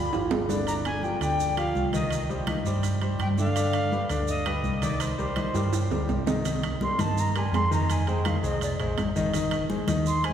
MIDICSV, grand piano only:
0, 0, Header, 1, 2, 480
1, 0, Start_track
1, 0, Key_signature, -3, "minor"
1, 0, Tempo, 361011
1, 893, Time_signature, 4, 2, 24, 8
1, 13739, End_track
2, 0, Start_track
2, 0, Title_t, "Grand piano"
2, 0, Program_c, 0, 0
2, 176, Note_on_c, 0, 53, 67
2, 179, Note_on_c, 0, 65, 69
2, 183, Note_on_c, 0, 67, 72
2, 569, Note_off_c, 0, 53, 0
2, 571, Note_off_c, 0, 65, 0
2, 573, Note_off_c, 0, 67, 0
2, 651, Note_on_c, 0, 50, 83
2, 658, Note_on_c, 0, 62, 86
2, 662, Note_on_c, 0, 74, 82
2, 849, Note_off_c, 0, 50, 0
2, 853, Note_off_c, 0, 62, 0
2, 856, Note_off_c, 0, 74, 0
2, 897, Note_on_c, 0, 50, 81
2, 905, Note_on_c, 0, 74, 77
2, 907, Note_on_c, 0, 62, 75
2, 1289, Note_off_c, 0, 50, 0
2, 1294, Note_off_c, 0, 74, 0
2, 1295, Note_off_c, 0, 62, 0
2, 1375, Note_on_c, 0, 65, 54
2, 1376, Note_on_c, 0, 53, 60
2, 1382, Note_on_c, 0, 67, 62
2, 1572, Note_off_c, 0, 53, 0
2, 1572, Note_off_c, 0, 65, 0
2, 1576, Note_off_c, 0, 67, 0
2, 1603, Note_on_c, 0, 62, 73
2, 1605, Note_on_c, 0, 50, 77
2, 1613, Note_on_c, 0, 74, 90
2, 2002, Note_off_c, 0, 62, 0
2, 2003, Note_off_c, 0, 50, 0
2, 2007, Note_off_c, 0, 74, 0
2, 2088, Note_on_c, 0, 53, 72
2, 2092, Note_on_c, 0, 65, 69
2, 2101, Note_on_c, 0, 67, 66
2, 2484, Note_off_c, 0, 53, 0
2, 2487, Note_off_c, 0, 65, 0
2, 2492, Note_off_c, 0, 67, 0
2, 2570, Note_on_c, 0, 51, 96
2, 2575, Note_on_c, 0, 75, 96
2, 2576, Note_on_c, 0, 63, 84
2, 2965, Note_off_c, 0, 51, 0
2, 2968, Note_off_c, 0, 75, 0
2, 2969, Note_off_c, 0, 63, 0
2, 3049, Note_on_c, 0, 55, 72
2, 3053, Note_on_c, 0, 67, 72
2, 3058, Note_on_c, 0, 72, 72
2, 3248, Note_off_c, 0, 55, 0
2, 3251, Note_off_c, 0, 67, 0
2, 3253, Note_off_c, 0, 72, 0
2, 3287, Note_on_c, 0, 51, 71
2, 3291, Note_on_c, 0, 63, 72
2, 3297, Note_on_c, 0, 75, 70
2, 3487, Note_off_c, 0, 51, 0
2, 3489, Note_off_c, 0, 63, 0
2, 3493, Note_off_c, 0, 75, 0
2, 3532, Note_on_c, 0, 55, 80
2, 3535, Note_on_c, 0, 67, 66
2, 3543, Note_on_c, 0, 72, 73
2, 3927, Note_off_c, 0, 55, 0
2, 3929, Note_off_c, 0, 67, 0
2, 3933, Note_off_c, 0, 72, 0
2, 4002, Note_on_c, 0, 55, 65
2, 4005, Note_on_c, 0, 67, 69
2, 4014, Note_on_c, 0, 72, 77
2, 4401, Note_off_c, 0, 55, 0
2, 4403, Note_off_c, 0, 67, 0
2, 4408, Note_off_c, 0, 72, 0
2, 4495, Note_on_c, 0, 50, 94
2, 4502, Note_on_c, 0, 62, 82
2, 4502, Note_on_c, 0, 74, 82
2, 4692, Note_off_c, 0, 50, 0
2, 4696, Note_off_c, 0, 62, 0
2, 4696, Note_off_c, 0, 74, 0
2, 4738, Note_on_c, 0, 62, 73
2, 4739, Note_on_c, 0, 50, 88
2, 4743, Note_on_c, 0, 74, 87
2, 5130, Note_off_c, 0, 62, 0
2, 5131, Note_off_c, 0, 50, 0
2, 5134, Note_off_c, 0, 74, 0
2, 5209, Note_on_c, 0, 55, 67
2, 5213, Note_on_c, 0, 67, 59
2, 5217, Note_on_c, 0, 71, 60
2, 5408, Note_off_c, 0, 55, 0
2, 5411, Note_off_c, 0, 67, 0
2, 5413, Note_off_c, 0, 71, 0
2, 5453, Note_on_c, 0, 50, 80
2, 5458, Note_on_c, 0, 62, 87
2, 5460, Note_on_c, 0, 74, 84
2, 5847, Note_off_c, 0, 50, 0
2, 5850, Note_off_c, 0, 62, 0
2, 5852, Note_off_c, 0, 74, 0
2, 5928, Note_on_c, 0, 55, 72
2, 5931, Note_on_c, 0, 67, 68
2, 5931, Note_on_c, 0, 71, 68
2, 6324, Note_off_c, 0, 55, 0
2, 6326, Note_off_c, 0, 67, 0
2, 6326, Note_off_c, 0, 71, 0
2, 6413, Note_on_c, 0, 51, 86
2, 6424, Note_on_c, 0, 63, 91
2, 6427, Note_on_c, 0, 75, 89
2, 6808, Note_off_c, 0, 51, 0
2, 6814, Note_off_c, 0, 63, 0
2, 6816, Note_off_c, 0, 75, 0
2, 6890, Note_on_c, 0, 55, 77
2, 6894, Note_on_c, 0, 67, 82
2, 6899, Note_on_c, 0, 70, 73
2, 7089, Note_off_c, 0, 55, 0
2, 7092, Note_off_c, 0, 67, 0
2, 7094, Note_off_c, 0, 70, 0
2, 7127, Note_on_c, 0, 51, 68
2, 7132, Note_on_c, 0, 63, 65
2, 7136, Note_on_c, 0, 75, 69
2, 7327, Note_off_c, 0, 51, 0
2, 7330, Note_off_c, 0, 63, 0
2, 7333, Note_off_c, 0, 75, 0
2, 7374, Note_on_c, 0, 55, 72
2, 7375, Note_on_c, 0, 67, 72
2, 7382, Note_on_c, 0, 70, 71
2, 7768, Note_off_c, 0, 55, 0
2, 7769, Note_off_c, 0, 67, 0
2, 7773, Note_off_c, 0, 70, 0
2, 7850, Note_on_c, 0, 55, 67
2, 7852, Note_on_c, 0, 67, 67
2, 7855, Note_on_c, 0, 70, 64
2, 8246, Note_off_c, 0, 55, 0
2, 8247, Note_off_c, 0, 67, 0
2, 8249, Note_off_c, 0, 70, 0
2, 8329, Note_on_c, 0, 51, 82
2, 8332, Note_on_c, 0, 75, 79
2, 8333, Note_on_c, 0, 63, 90
2, 8528, Note_off_c, 0, 51, 0
2, 8530, Note_off_c, 0, 63, 0
2, 8530, Note_off_c, 0, 75, 0
2, 8570, Note_on_c, 0, 51, 74
2, 8577, Note_on_c, 0, 63, 84
2, 8580, Note_on_c, 0, 75, 79
2, 8966, Note_off_c, 0, 51, 0
2, 8970, Note_off_c, 0, 63, 0
2, 8971, Note_off_c, 0, 75, 0
2, 9054, Note_on_c, 0, 55, 58
2, 9059, Note_on_c, 0, 67, 59
2, 9065, Note_on_c, 0, 70, 63
2, 9251, Note_off_c, 0, 55, 0
2, 9254, Note_off_c, 0, 67, 0
2, 9258, Note_off_c, 0, 70, 0
2, 9281, Note_on_c, 0, 51, 77
2, 9288, Note_on_c, 0, 63, 76
2, 9288, Note_on_c, 0, 75, 78
2, 9680, Note_off_c, 0, 51, 0
2, 9684, Note_off_c, 0, 63, 0
2, 9684, Note_off_c, 0, 75, 0
2, 9775, Note_on_c, 0, 55, 75
2, 9779, Note_on_c, 0, 67, 69
2, 9780, Note_on_c, 0, 70, 68
2, 10168, Note_off_c, 0, 55, 0
2, 10171, Note_off_c, 0, 67, 0
2, 10171, Note_off_c, 0, 70, 0
2, 10253, Note_on_c, 0, 51, 92
2, 10257, Note_on_c, 0, 63, 90
2, 10257, Note_on_c, 0, 75, 91
2, 10647, Note_off_c, 0, 51, 0
2, 10649, Note_off_c, 0, 63, 0
2, 10649, Note_off_c, 0, 75, 0
2, 10734, Note_on_c, 0, 56, 74
2, 10742, Note_on_c, 0, 68, 75
2, 10747, Note_on_c, 0, 72, 84
2, 10931, Note_off_c, 0, 56, 0
2, 10936, Note_off_c, 0, 68, 0
2, 10938, Note_off_c, 0, 72, 0
2, 10979, Note_on_c, 0, 51, 68
2, 10982, Note_on_c, 0, 63, 73
2, 10986, Note_on_c, 0, 75, 66
2, 11173, Note_off_c, 0, 51, 0
2, 11175, Note_off_c, 0, 63, 0
2, 11178, Note_off_c, 0, 75, 0
2, 11207, Note_on_c, 0, 56, 74
2, 11215, Note_on_c, 0, 68, 75
2, 11217, Note_on_c, 0, 72, 68
2, 11603, Note_off_c, 0, 56, 0
2, 11608, Note_off_c, 0, 68, 0
2, 11609, Note_off_c, 0, 72, 0
2, 11694, Note_on_c, 0, 56, 78
2, 11696, Note_on_c, 0, 68, 75
2, 11701, Note_on_c, 0, 72, 75
2, 12087, Note_off_c, 0, 56, 0
2, 12088, Note_off_c, 0, 68, 0
2, 12091, Note_off_c, 0, 72, 0
2, 12178, Note_on_c, 0, 51, 95
2, 12185, Note_on_c, 0, 63, 89
2, 12187, Note_on_c, 0, 75, 88
2, 12373, Note_off_c, 0, 51, 0
2, 12377, Note_off_c, 0, 63, 0
2, 12378, Note_off_c, 0, 75, 0
2, 12416, Note_on_c, 0, 51, 82
2, 12420, Note_on_c, 0, 63, 75
2, 12420, Note_on_c, 0, 75, 93
2, 12808, Note_off_c, 0, 51, 0
2, 12811, Note_off_c, 0, 63, 0
2, 12811, Note_off_c, 0, 75, 0
2, 12890, Note_on_c, 0, 56, 62
2, 12891, Note_on_c, 0, 68, 73
2, 12897, Note_on_c, 0, 72, 64
2, 13088, Note_off_c, 0, 56, 0
2, 13089, Note_off_c, 0, 68, 0
2, 13092, Note_off_c, 0, 72, 0
2, 13131, Note_on_c, 0, 51, 81
2, 13139, Note_on_c, 0, 63, 95
2, 13142, Note_on_c, 0, 75, 79
2, 13525, Note_off_c, 0, 51, 0
2, 13530, Note_off_c, 0, 63, 0
2, 13532, Note_off_c, 0, 75, 0
2, 13616, Note_on_c, 0, 56, 68
2, 13617, Note_on_c, 0, 68, 71
2, 13626, Note_on_c, 0, 72, 72
2, 13739, Note_off_c, 0, 56, 0
2, 13739, Note_off_c, 0, 68, 0
2, 13739, Note_off_c, 0, 72, 0
2, 13739, End_track
0, 0, End_of_file